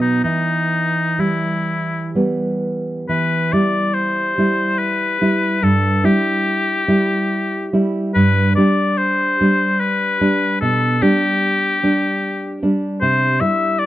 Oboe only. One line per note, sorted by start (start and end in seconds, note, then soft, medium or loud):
0.01 0.23 D#4 soft
0.24 1.22 D#4 soft
1.20 2.15 E4 soft
3.09 3.54 B4 medium
3.53 3.95 D5 medium
3.94 4.80 C5 soft
4.79 5.64 B4 medium
5.63 6.07 A4 medium
6.05 7.74 G4 medium
8.14 8.53 B4 medium
8.55 8.99 D5 medium
8.98 9.81 C5 medium
9.80 10.60 B4 medium
10.61 11.04 A4 medium
11.03 12.62 G4 medium
13.02 13.42 C5 medium
13.40 13.80 E5 medium
13.79 13.86 D5 medium